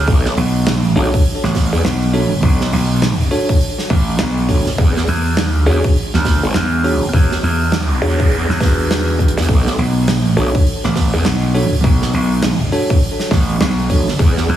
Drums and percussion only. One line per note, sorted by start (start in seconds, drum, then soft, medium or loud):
0.08 kick loud
0.08 open hi-hat medium
0.25 snare soft
0.25 open hi-hat soft
0.37 open hi-hat medium
0.55 open hi-hat soft
0.66 snare loud
0.66 open hi-hat medium
0.84 open hi-hat soft
0.97 open hi-hat medium
1.14 kick loud
1.14 open hi-hat soft
1.25 open hi-hat medium
1.44 snare medium
1.44 open hi-hat soft
1.55 kick medium
1.55 snare medium
1.55 open hi-hat loud
1.73 open hi-hat medium
1.85 snare loud
2.02 open hi-hat soft
2.14 open hi-hat medium
2.32 open hi-hat medium
2.43 kick loud
2.43 open hi-hat medium
2.61 snare medium
2.61 open hi-hat soft
2.72 open hi-hat medium
2.91 open hi-hat soft
3.02 snare loud
3.02 open hi-hat medium
3.20 open hi-hat soft
3.31 open hi-hat medium
3.49 kick loud
3.49 open hi-hat medium
3.61 open hi-hat medium
3.79 snare soft
3.79 open hi-hat soft
3.90 kick loud
3.90 open hi-hat medium
4.08 open hi-hat medium
4.19 snare loud
4.37 open hi-hat soft
4.49 kick medium
4.49 open hi-hat medium
4.66 snare soft
4.66 open hi-hat medium
4.78 kick loud
4.78 open hi-hat medium
4.96 snare medium
4.96 open hi-hat soft
5.07 open hi-hat medium
5.25 open hi-hat medium
5.37 snare loud
5.55 open hi-hat soft
5.67 open hi-hat medium
5.84 kick loud
5.84 open hi-hat soft
5.96 open hi-hat medium
6.14 snare medium
6.14 open hi-hat soft
6.25 kick medium
6.25 snare medium
6.25 open hi-hat medium
6.43 open hi-hat medium
6.54 snare loud
6.72 open hi-hat soft
6.84 open hi-hat medium
7.02 open hi-hat medium
7.13 kick loud
7.13 open hi-hat medium
7.31 snare medium
7.31 open hi-hat soft
7.43 open hi-hat medium
7.62 open hi-hat soft
7.72 snare loud
7.72 open hi-hat medium
7.91 open hi-hat soft
8.02 open hi-hat medium
8.19 kick loud
8.19 open hi-hat soft
8.21 open hi-hat soft
8.27 open hi-hat soft
8.31 open hi-hat medium
8.49 snare soft
8.49 open hi-hat soft
8.60 kick loud
8.60 snare medium
8.60 open hi-hat medium
8.78 open hi-hat soft
8.91 snare loud
8.91 open hi-hat medium
9.08 open hi-hat soft
9.19 kick medium
9.19 closed hi-hat medium
9.28 closed hi-hat medium
9.37 snare soft
9.37 closed hi-hat medium
9.42 closed hi-hat loud
9.48 kick loud
9.48 open hi-hat medium
9.67 snare medium
9.67 open hi-hat soft
9.78 open hi-hat medium
9.97 open hi-hat soft
10.07 snare loud
10.07 open hi-hat medium
10.26 open hi-hat soft
10.37 open hi-hat medium
10.55 kick loud
10.55 open hi-hat soft
10.67 open hi-hat medium
10.84 snare medium
10.84 open hi-hat soft
10.96 kick medium
10.96 snare medium
10.96 open hi-hat medium
11.14 open hi-hat soft
11.25 snare loud
11.25 open hi-hat medium
11.42 open hi-hat soft
11.55 open hi-hat medium
11.73 open hi-hat medium
11.84 kick loud
11.84 open hi-hat medium
12.02 snare medium
12.02 open hi-hat soft
12.13 open hi-hat medium
12.32 open hi-hat medium
12.42 snare loud
12.42 open hi-hat medium
12.61 open hi-hat soft
12.72 open hi-hat medium
12.90 kick loud
12.90 open hi-hat soft
13.02 open hi-hat medium
13.19 snare soft
13.19 open hi-hat soft
13.31 kick loud
13.31 snare medium
13.31 open hi-hat medium
13.50 open hi-hat soft
13.61 snare loud
13.61 open hi-hat medium
13.78 open hi-hat soft
13.90 kick medium
13.90 open hi-hat medium
14.07 snare soft
14.07 open hi-hat soft
14.19 kick loud
14.19 open hi-hat medium
14.38 snare medium
14.38 open hi-hat soft
14.49 open hi-hat medium